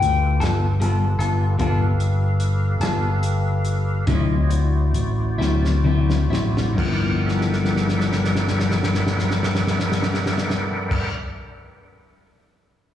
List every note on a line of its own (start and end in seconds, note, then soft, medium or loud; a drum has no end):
0.00 0.38 D2 medium
0.00 1.56 F4 medium
0.00 1.56 G4 medium
0.00 1.56 A4 medium
0.00 1.56 B4 medium
0.00 0.74 G5 medium
0.00 closed hi-hat medium
0.40 1.16 G1 medium
0.40 0.66 B3 soft
0.40 0.66 F4 medium
0.40 0.65 A4 medium
0.40 snare medium
0.40 closed hi-hat medium
0.74 1.57 F5 medium
0.80 1.04 G3 medium
0.80 1.05 B3 medium
0.80 1.05 F4 medium
0.80 1.05 A4 medium
0.80 closed hi-hat medium
1.19 1.56 G1 medium
1.19 1.45 B3 soft
1.19 1.44 F4 medium
1.19 1.43 A4 medium
1.19 closed hi-hat medium
1.59 2.78 G1 medium
1.59 1.83 G3 medium
1.59 1.84 B3 medium
1.59 1.84 F4 medium
1.59 4.06 G4 medium
1.59 1.85 A4 medium
1.59 4.06 A4 medium
1.59 4.05 B4 medium
1.59 4.05 F5 medium
1.59 kick loud
1.59 closed hi-hat medium
2.00 closed hi-hat medium
2.40 closed hi-hat medium
2.80 4.03 G1 medium
2.80 3.07 F4 soft
2.80 3.06 A4 medium
2.80 snare loud
2.80 closed hi-hat medium
2.84 3.08 B3 soft
3.23 closed hi-hat medium
3.65 closed hi-hat soft
4.07 4.90 D2 medium
4.07 4.33 D3 medium
4.07 4.34 F#3 medium
4.07 4.34 C4 medium
4.07 4.34 E4 loud
4.07 4.50 F4 medium
4.07 4.51 G4 medium
4.07 4.50 C#5 medium
4.07 4.51 D#5 medium
4.07 kick loud
4.07 snare soft
4.07 closed hi-hat medium
4.49 6.75 E4 medium
4.49 6.75 F#4 medium
4.49 6.75 C5 medium
4.49 6.75 D5 medium
4.49 closed hi-hat medium
4.93 5.35 A1 medium
4.93 closed hi-hat medium
5.38 6.26 D2 medium
5.38 5.67 F#3 soft
5.38 5.66 C4 medium
5.38 5.66 E4 medium
5.38 snare medium
5.65 snare soft
5.84 6.12 D3 medium
5.84 6.12 F#3 medium
5.84 6.13 C4 medium
5.84 6.13 E4 medium
6.10 snare medium
6.30 6.74 A1 medium
6.30 6.60 F#3 soft
6.30 6.59 C4 soft
6.30 6.59 E4 medium
6.30 snare medium
6.57 snare medium
6.73 11.08 G2 medium
6.73 11.09 G5 medium
6.77 11.07 G1 medium
6.77 11.11 F3 medium
6.77 11.10 A#4 medium
6.77 11.10 D5 medium
6.77 11.10 F#5 medium
6.77 kick loud
6.77 crash medium
6.86 11.14 B3 medium
6.90 11.17 E4 medium
7.26 11.07 A4 medium
7.26 11.07 B4 medium
7.26 11.07 E5 medium
7.26 snare soft
7.41 snare soft
7.53 snare soft
7.65 snare soft
7.76 snare soft
7.88 snare medium
8.00 snare medium
8.12 snare medium
8.24 snare medium
8.35 snare medium
8.47 snare medium
8.60 snare medium
8.71 snare medium
8.83 snare medium
8.94 snare medium
9.07 snare medium
9.19 snare medium
9.31 snare medium
9.43 snare medium
9.55 snare medium
9.67 snare medium
9.79 snare medium
9.92 snare medium
10.03 snare medium
10.14 snare medium
10.26 snare medium
10.38 snare medium
10.50 snare medium
10.91 kick loud
10.91 crash medium